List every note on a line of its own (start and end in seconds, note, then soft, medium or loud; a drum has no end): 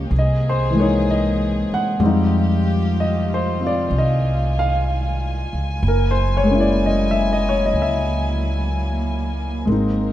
0.00 0.10 F3 soft
0.00 0.10 G3 soft
0.00 0.11 A#3 soft
0.00 1.97 A#3 soft
0.00 0.12 C#4 soft
0.00 0.13 C#5 medium
0.00 0.13 D#5 medium
0.10 1.66 C2 medium
0.10 1.98 E3 medium
0.10 1.99 C4 medium
0.10 1.98 G#4 medium
0.19 0.46 D#5 medium
0.49 0.77 C5 medium
0.71 1.98 E3 soft
0.71 2.00 G#3 soft
0.78 2.02 A#3 soft
0.78 2.04 D#4 medium
0.78 1.08 C#5 medium
1.11 1.67 D#5 medium
1.70 2.23 F#5 medium
1.70 muted upright bass stroke soft
1.99 3.86 F2 medium
1.99 5.79 D#3 medium
1.99 5.81 G3 soft
1.99 5.82 G#3 soft
1.99 3.58 C4 soft
1.99 5.78 F4 medium
1.99 3.89 G4 medium
2.06 5.84 D#4 medium
3.00 3.29 D#5 medium
3.34 3.62 C5 medium
3.60 5.82 C4 soft
3.60 5.84 F4 soft
3.67 3.94 D5 medium
3.90 5.47 C2 medium
3.90 9.63 G#5 medium
3.98 4.54 D#5 medium
4.59 4.90 F5 medium
5.53 5.81 C#2 medium
5.79 7.70 F#1 medium
5.79 9.62 F#3 medium
5.79 10.13 A#3 medium
5.79 9.62 E4 medium
5.88 6.17 A#4 medium
6.11 6.44 C5 medium
6.37 6.57 C#5 medium
6.43 9.64 G#3 soft
6.43 9.66 A#3 soft
6.51 9.69 C#4 soft
6.51 9.71 E4 soft
6.60 6.76 D5 medium
6.86 7.13 D#5 medium
7.11 7.42 E5 medium
7.33 7.36 D#5 medium
7.49 7.66 C#5 medium
7.66 7.74 D#5 medium
7.73 9.63 C#2 medium
7.82 9.36 E5 medium
9.65 10.13 G#1 medium
9.65 10.13 G#3 soft
9.65 10.13 A#3 soft
9.65 10.13 C4 soft
9.65 10.13 C4 medium
9.65 10.13 A#4 medium
9.69 10.13 G#3 medium
9.69 10.13 D#4 soft